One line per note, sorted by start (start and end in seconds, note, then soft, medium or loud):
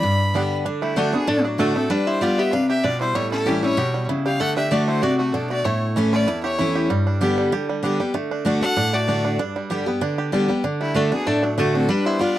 0.00 0.63 G2 loud
0.00 0.54 D5 medium
0.00 0.54 B5 loud
0.34 0.64 D3 medium
0.34 0.64 G3 medium
0.34 0.42 G3 medium
0.34 0.65 B3 medium
0.34 0.42 B3 medium
0.34 0.42 D4 medium
0.34 0.65 G4 medium
0.65 0.95 D3 medium
0.65 0.96 D4 medium
0.81 0.97 G3 medium
0.81 1.25 A3 medium
0.81 0.98 E4 medium
0.96 1.12 D3 medium
0.96 1.13 A3 medium
0.96 1.13 A3 loud
0.96 1.12 D4 medium
0.96 1.13 D4 loud
0.96 1.13 F#4 medium
0.96 1.11 F#4 loud
1.12 1.28 B3 medium
1.12 1.27 D4 medium
1.12 1.28 D4 medium
1.12 1.27 F#4 medium
1.12 1.30 G#4 medium
1.27 1.87 A2 loud
1.27 1.45 D4 medium
1.27 1.43 D4 medium
1.27 1.46 A4 loud
1.44 1.59 F#3 medium
1.44 1.60 D4 medium
1.44 1.58 D4 medium
1.58 1.75 D3 medium
1.58 1.75 A3 medium
1.58 1.76 A3 medium
1.58 1.89 D4 medium
1.58 1.75 D4 medium
1.58 1.76 F#4 medium
1.58 1.73 F#4 loud
1.75 1.90 A3 medium
1.75 1.91 C4 medium
1.75 1.90 D4 medium
1.75 1.89 F#4 medium
1.75 1.91 A4 medium
1.90 2.20 G3 medium
1.90 2.35 D4 medium
1.90 2.07 D4 medium
1.90 2.08 B4 medium
2.07 2.22 E4 medium
2.07 2.23 C5 loud
2.21 2.51 G3 medium
2.21 2.52 B3 loud
2.21 2.39 F4 medium
2.21 2.52 F4 loud
2.21 2.66 G4 medium
2.21 2.39 D5 medium
2.38 2.81 B3 medium
2.38 2.53 G4 medium
2.38 2.54 E5 loud
2.52 2.83 C3 medium
2.52 2.83 D4 medium
2.52 2.70 B4 medium
2.52 2.68 F5 loud
2.69 3.13 G4 medium
2.69 2.85 G4 medium
2.69 2.85 E5 medium
2.84 3.14 B2 medium
2.84 3.16 D4 medium
2.84 3.01 F4 medium
2.84 3.00 D5 loud
3.01 3.14 G3 medium
3.01 3.15 E4 medium
3.01 3.17 C5 loud
3.15 3.75 A2 loud
3.15 3.60 G3 medium
3.15 3.32 E4 medium
3.15 3.31 C#5 loud
3.31 3.46 C#4 medium
3.31 3.75 E4 medium
3.31 3.48 A4 medium
3.46 3.62 E3 medium
3.46 3.63 G3 medium
3.46 3.64 C#4 medium
3.46 3.63 C#4 medium
3.46 3.61 E4 loud
3.46 3.77 G4 medium
3.46 3.62 G4 medium
3.62 3.93 G3 medium
3.62 3.78 C#4 medium
3.62 3.77 E4 medium
3.62 4.06 E4 medium
3.62 4.06 C#5 loud
3.77 4.07 B2 medium
3.77 4.22 G4 medium
3.94 4.24 G3 medium
4.09 4.39 C#3 medium
4.09 4.40 E4 medium
4.26 4.40 G3 medium
4.26 4.41 G4 medium
4.26 4.41 F5 loud
4.40 4.70 D3 medium
4.40 4.88 A3 medium
4.40 4.57 A4 medium
4.40 4.55 F#5 loud
4.56 4.70 D4 medium
4.56 4.72 G4 medium
4.56 4.72 E5 loud
4.71 5.01 D3 medium
4.71 5.01 A3 loud
4.71 5.02 D4 medium
4.71 4.88 F#4 medium
4.71 5.02 F#4 medium
4.71 4.87 D5 medium
4.88 5.18 A3 medium
4.88 5.03 E4 medium
4.88 5.04 C5 medium
5.02 5.33 C3 medium
5.02 5.33 D4 medium
5.02 5.19 F#4 medium
5.02 5.18 D5 medium
5.18 5.49 A3 medium
5.18 5.33 A3 medium
5.18 5.34 F#4 medium
5.33 5.64 B2 medium
5.33 5.65 D4 medium
5.33 5.51 D4 medium
5.33 5.49 A4 medium
5.49 5.64 A3 medium
5.49 5.65 F#4 medium
5.49 5.66 D5 loud
5.64 6.25 A2 medium
5.64 6.10 A3 medium
5.64 5.96 E4 medium
5.64 5.96 C#5 medium
5.96 6.26 E3 medium
5.96 6.41 E3 medium
5.96 6.26 A3 loud
5.96 6.27 C#4 loud
5.96 6.27 E4 loud
6.12 6.56 C#4 medium
6.12 6.42 A4 medium
6.12 6.42 D5 loud
6.27 6.87 E2 loud
6.27 6.57 E4 medium
6.43 6.87 E4 medium
6.43 6.74 G4 medium
6.43 6.86 C#5 loud
6.59 6.88 E3 medium
6.59 6.89 A3 medium
6.59 6.89 C#4 medium
6.59 6.90 E4 medium
6.59 6.89 E4 medium
6.75 6.90 G4 medium
6.90 7.49 G2 medium
6.90 7.34 G3 medium
7.07 7.83 D4 medium
7.21 7.51 D3 medium
7.21 7.51 G3 loud
7.21 7.51 B3 medium
7.21 7.52 G4 medium
7.38 7.68 G3 medium
7.52 7.81 D3 loud
7.52 7.97 G4 medium
7.69 7.99 G3 medium
7.83 7.99 D3 medium
7.83 7.99 G3 medium
7.83 8.00 B3 medium
7.83 8.31 D4 medium
7.83 7.98 G4 loud
8.00 8.14 G3 medium
8.00 8.15 B3 soft
8.00 8.14 G4 medium
8.14 8.44 D3 medium
8.14 8.59 A3 medium
8.31 8.46 D4 medium
8.45 8.61 D3 medium
8.45 8.62 A3 medium
8.45 8.63 D4 medium
8.45 8.62 D4 loud
8.45 8.60 F#4 loud
8.61 8.77 D4 medium
8.61 8.77 D4 soft
8.61 8.76 F#4 medium
8.61 8.94 A4 loud
8.61 8.95 F#5 loud
8.77 9.36 A2 loud
8.77 9.08 D4 medium
8.93 9.36 A3 medium
8.93 9.40 F#4 medium
8.93 9.39 D5 loud
9.07 9.37 D3 medium
9.07 9.38 A3 medium
9.07 9.25 D4 medium
9.07 9.38 D4 medium
9.07 9.39 F#4 medium
9.25 9.39 D4 medium
9.39 9.99 G2 medium
9.39 9.84 D4 medium
9.56 9.99 G3 medium
9.70 9.86 D3 medium
9.70 9.86 G3 medium
9.70 9.87 B3 medium
9.70 10.15 G4 medium
9.70 9.85 G4 loud
9.86 10.30 B3 medium
9.86 10.02 B3 soft
9.86 10.01 G4 medium
10.01 10.31 D3 medium
10.01 10.32 D4 medium
10.18 10.61 G4 medium
10.32 10.48 D3 medium
10.32 10.49 G3 loud
10.32 10.49 B3 medium
10.32 10.63 D4 medium
10.32 10.47 G4 loud
10.48 10.64 G3 medium
10.48 10.64 B3 soft
10.48 10.63 G4 medium
10.64 10.93 D3 medium
10.64 10.95 D4 medium
10.81 10.96 G3 medium
10.81 11.24 A3 medium
10.81 10.97 E4 medium
10.94 11.11 D3 medium
10.94 11.11 A3 medium
10.94 11.12 A3 medium
10.94 11.11 D4 medium
10.94 11.12 D4 medium
10.94 11.12 F#4 medium
10.94 11.11 F#4 loud
11.12 11.27 B3 medium
11.12 11.42 D4 medium
11.12 11.27 D4 soft
11.12 11.26 F#4 medium
11.12 11.28 G#4 medium
11.27 11.86 A2 medium
11.27 11.71 A3 medium
11.27 11.43 D4 medium
11.27 11.45 A4 medium
11.43 11.59 F#3 medium
11.43 11.57 D4 medium
11.43 11.60 D4 medium
11.58 11.87 D3 medium
11.58 11.88 A3 medium
11.58 11.75 A3 medium
11.58 11.73 D4 medium
11.58 11.88 D4 medium
11.58 11.74 F#4 medium
11.58 11.88 F#4 loud
11.74 11.90 C4 medium
11.74 11.88 D4 medium
11.74 11.91 A4 medium
11.89 12.18 G3 loud
11.89 12.19 D4 medium
11.89 12.06 D4 medium
11.89 12.07 B4 medium
12.05 12.38 B3 medium
12.05 12.21 E4 medium
12.05 12.22 C5 medium
12.19 12.38 G3 medium
12.19 12.38 B3 loud
12.19 12.38 D4 medium
12.19 12.37 F4 medium
12.19 12.38 F4 medium
12.19 12.38 D5 loud